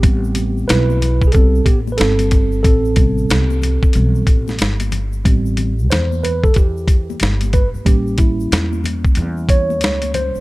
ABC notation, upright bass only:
X:1
M:4/4
L:1/16
Q:"Swing 16ths" 1/4=92
K:Am
V:1 name="Upright bass" clef=bass
A,,,4 B,,,4 C,,2 A,,,2 G,,,4 | A,,,4 C,,3 z B,,,2 A,,,2 G,,,4 | A,,,4 E,,4 E,,4 G,,,3 z | A,,,4 E,,4 E,,4 ^C,,3 z |]